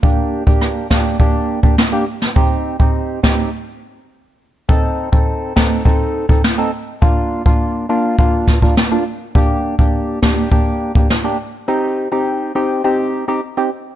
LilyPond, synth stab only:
\new Staff \with { instrumentName = "Synth stab" } { \time 4/4 \key g \minor \tempo 4 = 103 <bes d' g'>8. <bes d' g'>8. <bes d' g'>8 <bes d' g'>8. <bes d' g'>16 r16 <bes d' g'>16 r8 | <c' ees' g'>8. <c' ees' g'>8. <c' ees' g'>8 r2 | <c' ees' a'>8. <c' ees' a'>8. <c' ees' a'>8 <c' ees' a'>8. <c' ees' a'>16 r16 <c' ees' a'>16 r8 | <bes d' f'>8. <bes d' f'>8. <bes d' f'>8 <bes d' f'>8. <bes d' f'>16 r16 <bes d' f'>16 r8 |
<bes d' g'>8. <bes d' g'>8. <bes d' g'>8 <bes d' g'>8. <bes d' g'>16 r16 <bes d' g'>16 r8 | <c' ees' g'>8. <c' ees' g'>8. <c' ees' g'>8 <c' ees' g'>8. <c' ees' g'>16 r16 <c' ees' g'>16 r8 | }